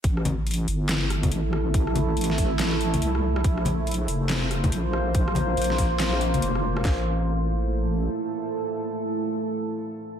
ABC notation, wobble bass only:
X:1
M:4/4
L:1/8
Q:"Swing 16ths" 1/4=141
K:Aphr
V:1 name="Wobble bass" clef=bass
A,,,3 G,,,3 A,,,2- | A,,,2 A,,,4 C,,2 | B,,,3 F,,,3 B,,,2- | B,,,2 B,,,4 F,,,2 |
A,,,6 z2 | z8 |]